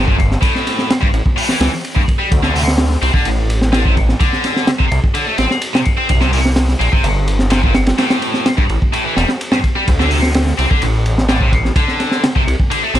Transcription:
Already playing: G1
0.07 A#2, kick
0.19 kick, ride
0.31 snare
0.42 A2, kick, ride
0.55 snare
0.67 snare, ride
0.79 snare
0.90 snare, ride
1.01 G2, kick
1.13 A1, ride
1.26 kick
1.36 A2, open hi-hat
1.49 E3, snare
1.60 C#2 E3, snare, ride
1.73 snare
1.85 ride
1.96 G2, kick
2.08 kick, ride
2.19 G3
2.32 D2, kick, ride
2.43 D3, snare
2.55 C3, open hi-hat
2.68 snare
2.78 snare, ride
2.90 snare
3.02 C2 C4, ride
3.14 D3, kick
3.25 A1, ride
3.50 ride
3.62 snare
3.73 D3, snare, ride
3.85 C3, kick
3.97 kick, ride
4.09 snare
4.20 D3, kick, ride
4.33 snare
4.44 snare, ride
4.56 snare
4.67 snare, ride
4.79 C3, kick
4.91 C2, ride
5.04 kick
5.15 D3, ride
5.27 A3
5.38 A1 C4, snare, ride
5.51 snare
5.62 ride
5.75 C3, snare
5.85 kick, ride
5.98 C4
6.09 C2, kick, ride
6.21 C3, snare
6.33 A#2, open hi-hat
6.46 snare
6.56 snare, ride
6.68 snare
6.80 A#1 A#3, ride
6.92 C3, kick
7.03 G1, ride
7.28 ride
7.39 snare
7.50 C3, snare, ride
7.63 A#2, kick
7.74 snare, ride
7.87 snare, ride
7.98 A2, snare, ride
8.10 snare, ride
8.22 snare, ride
8.34 snare
8.46 snare, ride
8.57 G2, kick
8.69 A1, ride
8.82 kick
8.93 A2, ride
9.04 E3
9.16 E1 G3, snare, ride
9.29 snare
9.41 ride
9.52 G2, snare
9.64 kick, ride
9.76 G3
9.88 D2, kick, ride
10.00 D3, snare
10.11 C3, open hi-hat
10.23 snare
10.34 snare, ride
10.47 snare
10.58 C2 C4, ride
10.70 D3, kick
10.82 A1, ride
11.06 ride
11.18 snare
11.29 D3, snare, ride
11.41 C3, kick
11.53 kick, ride
11.65 snare
11.76 D3, kick, ride
11.88 snare
12.00 snare, ride
12.11 snare
12.24 snare, ride
12.36 C3, kick
12.47 C2, ride
12.60 kick
12.71 D3, ride
12.83 A3
12.94 A1 C4, snare, ride

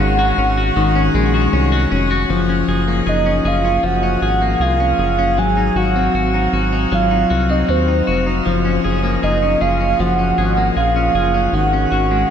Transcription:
Already playing: D#3 G#3 F#4 F#5
0.00 G#1 C#4
0.19 F#4
0.38 G#1 C#4
0.57 F#4
0.76 G#1 D#3
0.95 C#4
1.14 A#1 G#3
1.34 F#4
1.53 C2 C#4
1.72 F#4
1.91 F1 C#4
2.11 F#4
2.30 F#1 F3
2.49 C#4
2.68 F#1 G#4
2.88 A#3
3.06 F#1 G#4 D#5
3.26 C#4
3.45 F#1 G#4 F5
3.64 C#4
3.83 F#1 F3 F#5
4.03 C#4
4.22 G#1 G#4
4.42 A#3
4.60 C2 G#4 F5
4.80 C#4
4.98 F#1 G#4
5.19 C#4
5.37 G#1 F#3 G#5
5.57 D#4
5.75 G#1 F#4 F#5
5.96 C4
6.14 G#1 F#4
6.34 D#4
6.53 G#1 F#4
6.73 D#4
6.92 G#1 F#3 F5
7.11 D#4
7.30 C2 F#4
7.49 C4 D#5
7.69 D#2 F#4 C5
7.88 D#4
8.07 F1 F#4
8.27 D#4
8.46 F#1 F3
8.65 C#4
8.84 F#1 G#4
9.04 A#3
9.23 F#1 G#4 D#5
9.42 C#4
9.61 F#1 G#4 F5
9.80 C#4
9.99 F#1 F3 F#5
10.19 C#4
10.38 G#1 G#4
10.57 A#3
10.76 A#1 G#4 F5
10.96 C#4
11.14 F#1 G#4
11.34 C#4
11.53 G#1 D#3 F#5
11.73 C#4
11.91 G#1 F#4
12.11 G#3

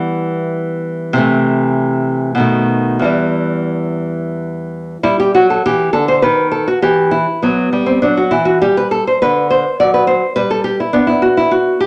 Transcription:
Already playing: E3 G3 B3
1.13 C3 E3
1.18 A3
2.35 B2 D#3
2.40 A3
2.99 E2 E3
3.04 G3
5.03 G3 E4
5.20 G4
5.35 F#3 F#4
5.50 A4
5.66 E3 G4
5.93 D3 A4
6.08 C5
6.22 D#3 B4
6.52 A4
6.68 F#4
6.82 E3 G4
7.11 E4
7.42 F#3 B3
7.73 G3
7.86 C4
8.02 F#3 D4
8.17 F#4
8.31 E3 E4
8.45 F#4
8.62 G3 G4
8.77 B4
8.91 A4
9.07 C5
9.22 D3 B4
9.50 C5
9.80 F#3 D5
9.94 B4
10.07 C5
10.36 G3 B4
10.51 A4
10.64 G4
10.80 E4
10.93 B3 D4
11.07 E4
11.22 F#4
11.37 E4
11.51 F#4
11.80 G4

